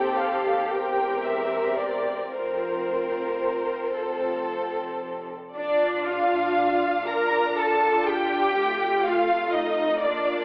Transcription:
Already playing: cello section D#2, double bass section D#2, violin section C4 A4 G5, viola section G4
0.17 violin section F5
0.70 double bass section E1, cello section E2, violin section C4 A#4 G5
1.23 violin section E5
1.77 violin section D5
2.32 double bass section F1, cello section F2, violin section C4 A#4 C5, viola section F4
3.92 double bass section F1, cello section F2, violin section C4 A4
5.55 double bass section A#1, viola section D4 F4, cello section D4, violin section D5
6.08 cello section F4, violin section F5
7.07 viola section D4 F4, cello section A#4, violin section A#5
7.59 cello section A4, violin section A5
8.08 cello section G4, violin section G5
8.56 double bass section F1, viola section A3 F4
9.05 cello section F4, violin section F5
9.54 cello section D#4, violin section D#5
10.02 double bass section A#1, viola section A#3 F4, cello section D4, violin section D5

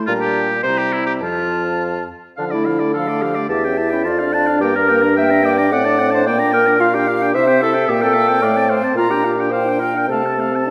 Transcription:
Already playing: french horn A3
0.07 bassoon A#2, french horn G3, clarinet D4, oboe F4, flute A#5
0.20 oboe G4
0.63 bassoon C3, french horn G3, clarinet E4, oboe C5, flute A#5
0.78 oboe G4
0.93 oboe E4
1.06 oboe G4
1.21 bassoon F2, french horn F3, oboe F4, clarinet F4, flute A5
2.37 bassoon D3, french horn F3, clarinet D4, oboe F5
2.51 french horn A3, clarinet E4, oboe D5
2.65 french horn F3, oboe F5
2.79 french horn A3, oboe D5
2.94 french horn F3, clarinet A4, oboe F5, flute F5
3.08 french horn A3, oboe D5
3.21 french horn F3, clarinet G4, oboe F5
3.35 french horn A3, oboe D5
3.49 bassoon E2, french horn E4, clarinet G4, flute E5, oboe A5
3.65 french horn C#4, oboe G5
3.78 french horn E4, oboe A5
3.90 french horn C#4, clarinet E4, oboe G5
4.04 bassoon F2, clarinet F4, french horn F4, flute D5, oboe A5
4.19 french horn D4, oboe F5
4.33 clarinet D4, french horn F4, oboe A5
4.47 french horn D4, oboe F5
4.60 bassoon G2, french horn A#3, clarinet G4, flute A#4, oboe G5
4.75 french horn D4, clarinet A#4, oboe A#5
4.89 french horn A#3, oboe G5
5.02 french horn D4, oboe A#5
5.16 french horn A#3, clarinet E5, oboe G5, flute G5
5.30 french horn D4, oboe A#5
5.44 french horn A#3, clarinet D5, oboe G5
5.58 french horn D4, oboe A#5
5.72 bassoon A2, french horn C4, clarinet D5, flute F#5, oboe F#5
5.85 french horn D4, oboe A5
5.99 french horn C4, oboe F#5
6.11 french horn D4, clarinet C5, oboe A5
6.26 bassoon A#2, french horn A#3, clarinet D5, flute G5, oboe G5
6.39 french horn D4, oboe A#5
6.53 french horn A#3, clarinet A#4, oboe G5
6.67 french horn D4, oboe A#5
6.80 clarinet F4, french horn F4, flute F5, oboe F5
6.94 french horn D4, clarinet G4, oboe G5
7.08 french horn F4, oboe F5
7.21 french horn D4, oboe G5
7.34 bassoon C3, french horn E4, clarinet C5, oboe E5, flute E5
7.47 french horn C4, oboe G5
7.61 french horn E4, clarinet A4, oboe E5
7.74 french horn C4, oboe G5
7.86 bassoon A#2, french horn A#3, clarinet G4, oboe E5, flute G5
8.02 french horn C4, clarinet A4, oboe G5
8.13 french horn A#3, oboe E5
8.28 french horn C4, oboe G5
8.42 bassoon A2, french horn A3, clarinet D5, oboe F5
8.56 french horn C4, oboe A5
8.69 french horn A3, clarinet C5, oboe F5
8.83 french horn C4, oboe A5
8.95 bassoon A#2, french horn F4, clarinet F4, oboe F5, flute A#5
9.10 french horn D4, clarinet G4, oboe G5
9.24 french horn F4, oboe F5
9.38 french horn D4, oboe G5
9.51 french horn F4, clarinet C5, oboe F5, flute G5
9.66 french horn D4, oboe G5
9.80 french horn F4, clarinet A#4, oboe F5
9.95 french horn D4, oboe G5
10.08 bassoon C3, french horn A3, clarinet A4, oboe F5, flute A5
10.23 french horn C4, oboe A5
10.38 french horn A3, oboe F5
10.52 french horn C4, oboe A5
10.67 french horn D4

